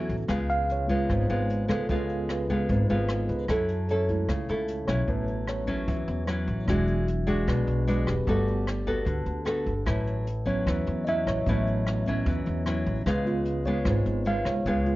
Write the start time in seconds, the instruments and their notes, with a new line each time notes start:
Already playing: nylon-string guitar E3 F#3 C#4 E4, tine electric piano B3 C#4 F#4 A4
0.09 upright bass A1, kick, closed hi-hat
0.28 upright bass C#2, nylon-string guitar C#3 G#3 B3 F4, kick, cross-stick, closed hi-hat
0.50 tine electric piano F5, closed hi-hat
0.70 tine electric piano C#5, closed hi-hat
0.87 tine electric piano G#3 B3 F4, nylon-string guitar G#3 B3 F4, kick, closed hi-hat
1.09 upright bass G#1, nylon-string guitar G#2, kick, cross-stick, closed hi-hat
1.30 upright bass G#1, nylon-string guitar G#3 B3 F4, closed hi-hat
1.50 closed hi-hat
1.68 upright bass C#2, nylon-string guitar G#3 B3 F4, tine electric piano A4, kick, cross-stick, closed hi-hat
1.89 upright bass C#2, nylon-string guitar C#3 G#3 B3 F4, tine electric piano G#3 B3 F4 G#4, kick, closed hi-hat
2.10 closed hi-hat
2.29 tine electric piano B4, cross-stick, closed hi-hat
2.50 nylon-string guitar G#3 B3 F4, kick, closed hi-hat
2.69 upright bass G#1, nylon-string guitar G#2, kick, closed hi-hat
2.89 upright bass G#1, nylon-string guitar G#3 B3 F4, closed hi-hat
3.09 cross-stick, closed hi-hat
3.29 upright bass C#2, tine electric piano B4, kick, closed hi-hat
3.48 upright bass F#2, nylon-string guitar F#3 C#4 E4 A4, tine electric piano A4, kick, cross-stick, closed hi-hat
3.68 closed hi-hat
3.89 nylon-string guitar C#4 E4 A4, tine electric piano C#5, closed hi-hat
4.09 tine electric piano G#3 A3 E4, kick, closed hi-hat
4.28 upright bass C#2, nylon-string guitar C#3, kick, cross-stick, closed hi-hat
4.48 upright bass C#2, nylon-string guitar C#4 E4 A4, closed hi-hat
4.68 closed hi-hat
4.87 upright bass B1, nylon-string guitar F#3 C#4 E4, tine electric piano C#5, kick, cross-stick, closed hi-hat
5.06 upright bass A1, nylon-string guitar A2, tine electric piano F#3 B3 C#4 B4, kick, closed hi-hat
5.28 closed hi-hat
5.47 tine electric piano C#5, cross-stick, closed hi-hat
5.67 nylon-string guitar F#3 C#4 E4, kick, closed hi-hat
5.88 upright bass E2, nylon-string guitar E3, kick, closed hi-hat
6.08 upright bass E2, closed hi-hat
6.27 nylon-string guitar F#3 C#4 E4, cross-stick, closed hi-hat
6.47 upright bass A1, kick, closed hi-hat
6.67 upright bass E1, nylon-string guitar E3 G#3 D4 F#4, tine electric piano F#3 G#3 D4 F#4, kick, cross-stick, closed hi-hat
6.88 closed hi-hat
7.08 closed hi-hat
7.27 nylon-string guitar G#3 D4 F#4, tine electric piano G#4, kick, closed hi-hat
7.47 upright bass B1, nylon-string guitar B2, tine electric piano F#3 G#3 D4, kick, cross-stick, closed hi-hat
7.67 upright bass B1, closed hi-hat
7.87 nylon-string guitar G#3 D4 F#4, tine electric piano B4, closed hi-hat
8.07 upright bass E1, tine electric piano G4, kick, cross-stick, closed hi-hat
8.27 upright bass G1, nylon-string guitar G3 B3 F#4 A4, tine electric piano A3 B3, kick, closed hi-hat
8.48 closed hi-hat
8.67 cross-stick, closed hi-hat
8.87 nylon-string guitar B3 F#4 A4, kick, closed hi-hat
9.05 upright bass D2, nylon-string guitar D3, kick, closed hi-hat
9.26 upright bass D2, closed hi-hat
9.46 nylon-string guitar B3 F#4 A4, cross-stick, closed hi-hat
9.67 upright bass G1, kick, closed hi-hat
9.86 upright bass A1, nylon-string guitar A2 F#3 C#4 E4, tine electric piano B4, kick, cross-stick, closed hi-hat
10.07 closed hi-hat
10.27 closed hi-hat
10.46 tine electric piano F#3 B3 C#4 C#5, nylon-string guitar F#3 C#4 E4, kick, closed hi-hat
10.67 upright bass E2, nylon-string guitar E3, kick, cross-stick, closed hi-hat
10.87 upright bass E2, closed hi-hat
11.05 nylon-string guitar F#3 C#4 E4, tine electric piano D#5 E5, closed hi-hat
11.26 upright bass A1, tine electric piano C#5, kick, cross-stick, closed hi-hat
11.46 upright bass A1, nylon-string guitar A2 F#3 C#4 E4, tine electric piano F#3 B3 C#4, kick, closed hi-hat
11.67 closed hi-hat
11.86 cross-stick, closed hi-hat
12.06 tine electric piano F#3 B3 C#4, nylon-string guitar F#3 C#4 E4, kick, closed hi-hat
12.26 upright bass E2, nylon-string guitar E3, kick, closed hi-hat
12.46 upright bass E2, closed hi-hat
12.66 nylon-string guitar F#3 C#4 E4, cross-stick, closed hi-hat
12.86 upright bass A1, kick, closed hi-hat
13.06 upright bass C#2, nylon-string guitar C#3 G#3 B3 F4, tine electric piano B4, kick, cross-stick, closed hi-hat
13.25 tine electric piano G#3 B3 F4, closed hi-hat
13.46 closed hi-hat
13.65 nylon-string guitar G#3 B3 F4, tine electric piano C#5, kick, closed hi-hat
13.85 upright bass G#1, nylon-string guitar G#2, tine electric piano G#3 B3 F4, kick, cross-stick, closed hi-hat
14.06 upright bass G#1, closed hi-hat
14.25 nylon-string guitar G#3 B3 F4, tine electric piano F5, closed hi-hat
14.45 upright bass C#2, tine electric piano C#5, kick, cross-stick, closed hi-hat
14.65 upright bass C#2, nylon-string guitar C#3 G#3 B3 F4, kick, closed hi-hat
14.85 tine electric piano G#3 B3 F4, closed hi-hat